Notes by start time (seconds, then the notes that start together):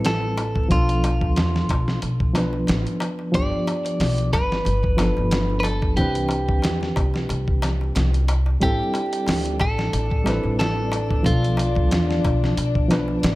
Already playing: A1 G3 C4 E4 A4 B4
0.05 A4, snare, closed hi-hat, darbuka tek
0.23 darbuka tek
0.37 closed hi-hat, darbuka tek
0.55 kick, darbuka tek
0.68 B1 F3 B3 D4 F4, kick, closed hi-hat, darbuka tek
0.73 A4
0.89 closed hi-hat, darbuka tek
1.04 closed hi-hat, darbuka tek
1.21 kick, darbuka tek
1.36 E2, snare, closed hi-hat, darbuka tek
1.54 snare, darbuka tek
1.69 B1, kick, closed hi-hat, darbuka tek
1.88 snare, darbuka tek
2.02 B1, closed hi-hat, darbuka tek
2.20 kick, darbuka tek
2.33 F3 B3 D4, snare, closed hi-hat, darbuka tek
2.38 B4
2.53 darbuka tek
2.67 A1, snare, closed hi-hat, darbuka tek
2.86 closed hi-hat, darbuka tek
3.00 closed hi-hat, darbuka tek
3.19 darbuka tek
3.32 G1 F3 B3 D4 D5, kick, closed hi-hat, darbuka tek
3.36 G4
3.53 darbuka tek
3.67 closed hi-hat, darbuka tek
3.85 closed hi-hat, darbuka tek
4.00 B1, snare, open hi-hat, darbuka tek
4.18 closed hi-hat, darbuka tek
4.33 G1 B4, kick, closed hi-hat, darbuka tek
4.52 snare, darbuka tek
4.65 G1, closed hi-hat, darbuka tek
4.83 kick, darbuka tek
4.97 F3 B3 D4, snare, closed hi-hat, darbuka tek
5.02 A4
5.17 G1, darbuka tek
5.31 snare, closed hi-hat, darbuka tek
5.50 darbuka tek
5.60 B4, darbuka tek
5.64 A4, closed hi-hat
5.82 kick, darbuka tek
5.96 C2 E3 C4 D4 G4, kick, closed hi-hat, darbuka tek
6.01 B4
6.15 closed hi-hat, darbuka tek
6.29 closed hi-hat, darbuka tek
6.48 kick, darbuka tek
6.62 E2, snare, closed hi-hat, darbuka tek
6.81 snare, darbuka tek
6.96 C2, kick, closed hi-hat, darbuka tek
7.14 snare, darbuka tek
7.29 C2, closed hi-hat, darbuka tek
7.48 kick, darbuka tek
7.62 snare, closed hi-hat, darbuka tek
7.81 darbuka tek
7.95 C2, snare, closed hi-hat, darbuka tek
8.14 closed hi-hat, darbuka tek
8.28 closed hi-hat, darbuka tek
8.46 darbuka tek
8.60 A1 G3 C4 D4 E4 G4, kick, closed hi-hat, darbuka tek
8.65 A4
8.79 darbuka tek
8.94 closed hi-hat, darbuka tek
9.13 closed hi-hat, darbuka tek
9.27 D2, snare, open hi-hat, darbuka tek
9.45 closed hi-hat, darbuka tek
9.60 A1 A4, kick, closed hi-hat, darbuka tek
9.78 snare, darbuka tek
9.93 A1, closed hi-hat, darbuka tek
10.10 kick, darbuka tek
10.24 G3 C4 E4, closed hi-hat, darbuka tek
10.28 B4, snare
10.44 A1, darbuka tek
10.59 A4, snare, closed hi-hat, darbuka tek
10.76 darbuka tek
10.92 closed hi-hat, darbuka tek
11.11 kick, darbuka tek
11.23 B1 F3 B3 D4 F4, kick, closed hi-hat, darbuka tek
11.27 A4
11.43 closed hi-hat, darbuka tek
11.57 closed hi-hat, darbuka tek
11.75 kick, darbuka tek
11.91 E2, snare, closed hi-hat, darbuka tek
12.09 snare, darbuka tek
12.25 B1, kick, closed hi-hat, darbuka tek
12.44 snare, darbuka tek
12.57 B1, closed hi-hat, darbuka tek
12.75 kick, darbuka tek
12.88 F3 B3 D4, snare, closed hi-hat, darbuka tek
12.92 B4
13.08 darbuka tek
13.23 A1, snare, closed hi-hat, darbuka tek